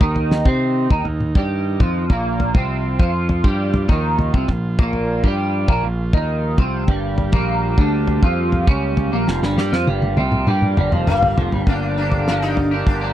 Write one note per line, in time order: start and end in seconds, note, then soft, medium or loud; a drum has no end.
0.00 0.42 D#2 medium
0.00 2.05 D#3 medium
0.00 0.45 D#3 medium
0.00 2.05 D#4 medium
0.00 0.45 D#4 medium
0.00 kick loud
0.00 floor tom medium
0.16 floor tom medium
0.31 snare medium
0.45 0.87 C3 medium
0.45 0.89 C4 medium
0.45 0.90 C5 medium
0.45 kick loud
0.45 floor tom medium
0.90 1.04 D#2 medium
0.90 1.04 D#3 medium
0.90 1.05 D#4 medium
0.90 kick loud
0.90 floor tom medium
1.05 1.32 D#2 medium
1.05 1.29 D#3 medium
1.05 floor tom medium
1.20 mid tom medium
1.35 1.77 G2 medium
1.35 1.79 G3 medium
1.35 1.80 G4 medium
1.35 kick loud
1.35 floor tom medium
1.80 2.08 F2 medium
1.80 2.09 F3 medium
1.80 2.09 F4 medium
1.80 kick loud
1.80 floor tom medium
1.80 mid tom medium
2.09 2.51 A#1 medium
2.09 2.54 A#2 medium
2.09 6.84 F3 medium
2.09 2.54 A#3 loud
2.09 6.84 F4 medium
2.09 kick loud
2.09 floor tom medium
2.40 floor tom medium
2.54 2.96 C2 medium
2.54 2.98 C3 medium
2.54 2.99 C4 medium
2.54 kick loud
2.54 floor tom medium
2.99 3.41 F2 medium
2.99 3.43 F3 medium
2.99 3.43 F4 medium
2.99 kick loud
3.29 floor tom medium
3.44 3.86 G2 medium
3.44 3.88 G3 medium
3.44 3.88 G4 medium
3.44 kick loud
3.74 floor tom medium
3.89 4.30 D#2 loud
3.89 4.33 D#3 medium
3.89 4.33 D#4 medium
3.89 kick loud
4.19 floor tom medium
4.34 4.48 C2 medium
4.34 4.48 C3 medium
4.34 4.48 C4 medium
4.34 kick loud
4.48 4.76 A#1 medium
4.48 4.73 A#2 medium
4.48 kick medium
4.48 floor tom medium
4.79 5.21 A#1 medium
4.79 5.23 A#2 medium
4.79 5.23 A#3 medium
4.79 kick loud
4.79 floor tom medium
4.93 floor tom medium
5.23 5.65 G2 medium
5.23 5.68 G3 medium
5.23 5.68 G4 medium
5.23 kick loud
5.68 5.82 A#1 medium
5.68 5.83 A#2 medium
5.68 5.83 A#3 loud
5.68 kick loud
5.68 floor tom medium
5.84 6.12 A#1 medium
5.84 6.08 A#2 medium
6.13 6.55 D#2 medium
6.13 6.58 D#3 medium
6.13 6.58 D#4 loud
6.13 kick loud
6.13 floor tom medium
6.58 6.86 C2 loud
6.58 6.87 C3 medium
6.58 6.88 C4 medium
6.58 kick loud
6.58 floor tom medium
6.88 7.30 G1 medium
6.88 7.32 G2 loud
6.88 7.32 G3 loud
6.88 11.63 G3 medium
6.88 11.63 A#3 medium
6.88 9.25 G4 medium
6.88 kick loud
6.88 floor tom medium
7.18 floor tom medium
7.32 7.75 A#1 loud
7.32 7.77 A#2 medium
7.32 7.77 A#3 loud
7.32 kick loud
7.32 floor tom medium
7.78 8.19 D2 medium
7.78 8.22 D3 medium
7.78 8.22 D4 medium
7.78 kick loud
8.07 floor tom medium
8.22 8.64 F2 medium
8.22 8.67 F3 medium
8.22 8.67 F4 medium
8.22 kick loud
8.52 floor tom medium
8.67 9.09 C#2 medium
8.67 9.11 C#3 medium
8.67 9.12 C#4 medium
8.67 kick loud
8.97 floor tom medium
9.12 9.26 A#1 medium
9.12 9.26 A#2 medium
9.12 9.27 A#3 loud
9.27 9.41 F1 medium
9.27 9.41 F2 medium
9.27 9.42 F3 loud
9.27 11.64 F4 medium
9.27 snare medium
9.42 9.56 G1 medium
9.42 9.56 G2 medium
9.42 9.56 G3 loud
9.42 snare medium
9.57 9.71 G2 medium
9.57 9.71 G3 medium
9.57 9.72 G4 loud
9.57 snare medium
9.72 9.86 F2 medium
9.72 9.86 F3 medium
9.72 9.86 F4 medium
9.72 snare medium
9.87 10.15 G1 medium
9.87 10.16 G2 medium
9.87 10.16 G3 loud
9.87 high tom medium
10.02 high tom medium
10.17 10.45 C2 medium
10.17 10.46 C3 medium
10.17 10.46 C4 medium
10.17 high tom medium
10.32 mid tom medium
10.47 10.75 G2 medium
10.47 10.76 G3 medium
10.47 10.76 G4 medium
10.47 mid tom medium
10.62 mid tom medium
10.77 10.91 G1 medium
10.77 10.91 G2 medium
10.77 10.91 G3 loud
10.77 mid tom medium
10.92 11.06 F1 medium
10.92 11.06 F2 medium
10.92 11.06 F3 medium
10.92 mid tom medium
11.07 11.35 G1 medium
11.07 11.36 G2 medium
11.07 11.36 G3 medium
11.07 11.69 A#3 medium
11.07 mid tom medium
11.22 floor tom medium
11.37 11.51 F1 medium
11.37 11.51 F2 medium
11.37 11.51 F3 medium
11.37 floor tom loud
11.52 11.66 G1 medium
11.52 11.66 G2 medium
11.52 11.66 G3 medium
11.52 floor tom medium
11.67 12.82 G1 medium
11.67 12.26 G2 medium
11.67 12.27 D3 medium
11.67 11.96 F3 medium
11.67 11.97 A#3 medium
11.67 11.96 D4 medium
11.67 11.98 D4 medium
11.67 13.13 G4 medium
11.67 11.99 G4 medium
11.67 13.13 A#4 soft
11.67 13.13 D5 medium
11.67 13.13 F5 medium
11.67 kick loud
11.67 floor tom medium
11.97 12.27 F3 medium
11.97 12.28 A#3 medium
11.97 12.28 D4 medium
11.97 12.29 G4 medium
12.12 floor tom medium
12.27 12.72 G2 medium
12.27 12.72 D3 medium
12.27 12.43 F3 medium
12.27 12.43 A#3 medium
12.27 12.42 D4 medium
12.27 12.33 F4 medium
12.27 12.42 G4 medium
12.27 snare medium
12.42 12.56 F3 medium
12.42 12.56 A#3 medium
12.42 12.57 D4 medium
12.42 12.87 D#4 medium
12.42 12.58 G4 medium
12.57 muted clean electric guitar stroke soft
12.57 floor tom medium
12.71 13.03 F3 medium
12.71 13.02 A#3 medium
12.71 13.01 D4 medium
12.71 13.00 G4 medium
12.87 13.13 G1 medium
12.87 13.13 D4 medium
12.87 kick loud
13.01 13.13 F3 medium
13.01 13.13 A#3 medium
13.01 13.13 D4 medium
13.01 13.13 G4 medium